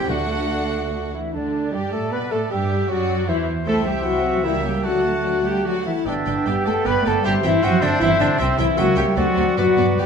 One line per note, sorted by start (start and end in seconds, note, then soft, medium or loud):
0.00 0.11 C4 medium
0.00 0.10 E4 medium
0.08 1.12 D2 medium
0.08 0.68 D3 medium
0.08 1.12 A3 soft
0.08 1.14 A3 medium
0.08 1.14 D4 medium
0.08 1.14 D4 soft
0.08 1.14 D4 medium
0.08 1.12 F#4 medium
0.08 1.14 A4 soft
0.08 0.83 F#5 medium
0.08 1.14 F#5 medium
1.13 1.32 E3 soft
1.13 1.33 E4 medium
1.13 1.33 E4 soft
1.13 1.33 E5 soft
1.34 1.70 D2 soft
1.34 1.70 D3 soft
1.34 1.73 D3 soft
1.34 1.70 D3 soft
1.34 1.70 D4 soft
1.34 1.73 D4 soft
1.34 1.75 D4 soft
1.34 1.70 D4 soft
1.34 1.75 D5 soft
1.73 1.81 G2 soft
1.73 1.92 G3 soft
1.73 1.92 G3 medium
1.73 1.92 G3 soft
1.73 1.94 G4 medium
1.73 1.93 G4 medium
1.73 1.92 G4 medium
1.73 1.93 G4 medium
1.73 1.92 G4 medium
1.73 2.53 D5 soft
1.73 1.94 G5 medium
1.92 2.12 A2 soft
1.92 2.14 A3 medium
1.92 2.12 A3 soft
1.92 2.12 A3 medium
1.92 2.12 A4 medium
1.92 2.13 A5 medium
2.12 2.31 B2 medium
2.12 2.20 B3 medium
2.12 2.31 B3 medium
2.12 2.31 B4 medium
2.12 2.31 B4 soft
2.12 2.31 B4 medium
2.12 2.33 B4 medium
2.12 2.30 B5 medium
2.31 2.39 A2 medium
2.31 2.50 A3 medium
2.31 2.39 A3 medium
2.31 2.40 A4 medium
2.31 2.50 A4 medium
2.31 2.39 A4 medium
2.31 2.52 A4 medium
2.31 2.51 A4 medium
2.31 2.50 A5 medium
2.50 2.89 G2 medium
2.50 2.89 G3 medium
2.50 2.91 G3 medium
2.50 2.89 G3 medium
2.50 2.88 G4 medium
2.50 2.89 G4 medium
2.50 2.91 G4 medium
2.50 2.90 G4 medium
2.50 2.92 G4 medium
2.50 2.90 E5 medium
2.50 2.91 G5 medium
2.89 3.28 F#2 medium
2.89 3.28 F#3 medium
2.89 3.27 F#3 medium
2.89 3.28 F#3 medium
2.89 3.28 F#4 medium
2.89 3.31 D5 medium
2.89 3.30 F#5 medium
3.28 3.48 E2 medium
3.28 3.47 E3 medium
3.28 3.37 E3 medium
3.28 3.47 E4 medium
3.28 3.36 E4 medium
3.28 3.47 E4 medium
3.28 3.69 C5 medium
3.28 3.47 E5 medium
3.66 4.40 C2 medium
3.66 3.84 A3 medium
3.66 4.46 C4 medium
3.66 3.84 E4 soft
3.66 3.75 A4 medium
3.66 3.76 A4 medium
3.66 3.84 C5 soft
3.66 4.46 E5 medium
3.66 4.84 E5 medium
3.66 3.84 G5 medium
3.66 3.84 A5 medium
3.85 4.05 G3 medium
3.85 4.05 C4 soft
3.85 4.05 G4 soft
3.85 4.04 G4 medium
3.85 4.05 G4 medium
3.85 4.05 E5 medium
3.85 4.06 G5 medium
4.04 4.43 F#3 medium
4.04 4.24 E4 medium
4.04 4.43 F#4 medium
4.04 4.46 F#4 medium
4.04 4.24 C5 medium
4.04 4.44 F#5 medium
4.04 4.24 G5 medium
4.23 4.44 C4 soft
4.23 4.44 G4 medium
4.23 4.44 E5 medium
4.43 4.84 C#2 medium
4.43 4.64 E3 medium
4.43 4.62 G3 medium
4.43 4.86 A#3 medium
4.43 4.53 E4 medium
4.43 4.64 E4 medium
4.43 4.63 E5 medium
4.43 4.64 E5 medium
4.43 4.85 G5 medium
4.43 4.62 A#5 soft
4.64 4.84 G3 medium
4.64 4.84 A#3 soft
4.64 4.84 G4 medium
4.64 4.86 G4 medium
4.64 4.84 C#5 soft
4.64 4.85 G5 medium
4.64 4.85 G5 soft
4.84 5.86 D2 medium
4.84 5.45 F#3 medium
4.84 5.03 F#3 medium
4.84 5.86 A3 soft
4.84 5.44 F#4 medium
4.84 5.03 D5 soft
4.84 5.18 F#5 medium
4.84 5.84 F#5 medium
4.84 5.03 F#5 medium
4.84 5.86 A5 medium
5.04 5.25 A3 soft
5.04 5.25 F#5 soft
5.04 5.25 A5 soft
5.25 5.45 F#3 soft
5.25 5.45 D5 soft
5.25 5.46 F#5 soft
5.45 5.65 G3 medium
5.45 5.66 A3 soft
5.45 5.67 G4 medium
5.45 5.66 G4 medium
5.45 5.65 F#5 soft
5.45 5.66 G5 medium
5.45 5.66 A5 soft
5.65 5.73 F#3 medium
5.65 5.85 F#3 soft
5.65 5.86 F#4 medium
5.65 5.75 F#4 medium
5.65 5.84 D5 soft
5.65 5.84 F#5 soft
5.65 5.85 F#5 medium
5.86 5.94 E3 medium
5.86 6.06 A3 soft
5.86 6.06 E4 medium
5.86 6.08 E4 medium
5.86 5.92 E5 medium
5.86 6.06 F#5 soft
5.86 6.06 A5 soft
6.05 6.14 G1 medium
6.05 6.45 D3 medium
6.05 7.21 B3 medium
6.05 6.14 B3 medium
6.05 6.48 D4 medium
6.05 6.47 D4 medium
6.05 6.14 D5 soft
6.05 6.46 D5 medium
6.05 6.88 E5 medium
6.05 7.26 G5 medium
6.05 6.15 G5 medium
6.26 6.34 G1 medium
6.26 6.34 B3 medium
6.26 6.35 D5 soft
6.26 6.34 G5 medium
6.46 6.54 G1 medium
6.46 6.66 G3 medium
6.46 6.54 B3 medium
6.46 6.66 G4 medium
6.46 6.67 G4 medium
6.46 6.55 D5 medium
6.46 6.54 G5 medium
6.46 6.53 G5 medium
6.66 6.74 G1 medium
6.66 6.86 A3 medium
6.66 6.74 B3 medium
6.66 6.86 A4 medium
6.66 6.87 A4 medium
6.66 6.74 D5 soft
6.66 6.75 G5 medium
6.66 6.72 A5 medium
6.85 6.94 G1 medium
6.85 7.05 B3 medium
6.85 6.94 B3 medium
6.85 7.05 B4 medium
6.85 7.06 B4 loud
6.85 6.94 D5 medium
6.85 7.26 D5 medium
6.85 6.94 G5 soft
6.85 7.08 B5 medium
7.05 7.14 G1 medium
7.05 7.25 A3 medium
7.05 7.13 B3 medium
7.05 7.24 A4 medium
7.05 7.25 A4 medium
7.05 7.13 D5 medium
7.05 7.14 G5 medium
7.05 7.24 A5 medium
7.24 7.33 G1 medium
7.24 7.43 G3 loud
7.24 7.32 C4 medium
7.24 8.78 C4 medium
7.24 7.44 G4 loud
7.24 7.34 G4 medium
7.24 8.40 C5 medium
7.24 9.19 E5 medium
7.24 7.32 E5 medium
7.24 7.32 G5 medium
7.24 7.44 G5 medium
7.44 7.52 G1 medium
7.44 7.63 E3 medium
7.44 7.52 C4 medium
7.44 7.65 E4 medium
7.44 7.64 E4 medium
7.44 7.51 E5 medium
7.44 7.65 E5 medium
7.44 7.52 G5 medium
7.63 7.71 G1 medium
7.63 7.82 F#3 medium
7.63 7.71 C4 medium
7.63 7.82 F#4 loud
7.63 7.84 F#4 medium
7.63 7.71 E5 medium
7.63 7.83 F#5 loud
7.63 7.71 G5 medium
7.81 7.90 G1 medium
7.81 7.90 D3 medium
7.81 7.91 C4 medium
7.81 8.01 D4 medium
7.81 8.00 D5 medium
7.81 7.90 E5 medium
7.81 7.90 G5 medium
8.00 8.09 G1 medium
8.00 8.20 E3 loud
8.00 8.10 C4 medium
8.00 8.09 E4 loud
8.00 8.19 E4 medium
8.00 8.22 E5 medium
8.00 8.08 E5 medium
8.00 8.09 G5 medium
8.20 8.28 G1 medium
8.20 8.39 D3 medium
8.20 8.28 C4 medium
8.20 8.28 D4 loud
8.20 8.39 D4 medium
8.20 8.40 D5 medium
8.20 8.28 E5 medium
8.20 8.28 G5 medium
8.38 8.47 C2 medium
8.38 8.58 C3 medium
8.38 8.58 C4 medium
8.38 8.47 C4 medium
8.38 8.58 C5 medium
8.38 8.77 E5 medium
8.38 8.46 E5 medium
8.38 8.47 G5 medium
8.58 8.66 C2 medium
8.58 8.77 E3 medium
8.58 8.66 C4 medium
8.58 8.79 E4 medium
8.58 8.67 E4 loud
8.58 8.66 E5 medium
8.58 8.78 E5 medium
8.58 8.66 G5 medium
8.77 8.85 C#2 medium
8.77 8.97 F#3 loud
8.77 9.18 A#3 medium
8.77 8.86 A#3 medium
8.77 8.97 F#4 loud
8.77 8.97 F#4 medium
8.77 9.17 C#5 medium
8.77 8.85 E5 medium
8.77 8.99 F#5 medium
8.77 8.85 G5 medium
8.96 9.05 C#2 medium
8.96 9.17 G3 medium
8.96 9.06 A#3 medium
8.96 9.06 G4 medium
8.96 9.18 G4 medium
8.96 9.04 E5 medium
8.96 9.05 G5 medium
8.96 9.16 G5 medium
9.16 9.25 D2 medium
9.16 9.56 F#3 medium
9.16 9.25 A3 medium
9.16 9.57 C4 medium
9.16 9.57 F#4 medium
9.16 9.56 F#4 medium
9.16 9.60 A4 medium
9.16 9.24 C5 medium
9.16 9.25 D5 medium
9.16 10.06 D5 medium
9.16 9.57 F#5 medium
9.36 9.45 D2 medium
9.36 9.45 A3 medium
9.36 9.44 C5 medium
9.36 9.44 D5 medium
9.57 9.65 G2 medium
9.57 9.64 G2 soft
9.57 9.98 F#3 medium
9.57 9.65 B3 medium
9.57 10.06 B3 medium
9.57 10.00 F#4 medium
9.57 9.98 F#4 medium
9.57 9.65 B4 medium
9.57 10.06 B4 medium
9.57 9.66 D5 medium
9.57 9.98 F#5 medium
9.65 9.73 G2 soft
9.74 9.80 G2 soft
9.74 9.86 G2 medium
9.74 9.86 B3 medium
9.74 9.85 B4 soft
9.78 9.88 G2 soft
9.78 9.86 D5 medium
9.89 9.96 G2 soft
9.97 10.03 G2 soft
9.97 10.06 G2 medium
9.97 10.06 G3 medium
9.97 10.06 B3 medium
9.97 10.06 G4 medium
9.97 10.06 B4 medium
9.97 10.06 D5 medium
9.97 10.06 G5 medium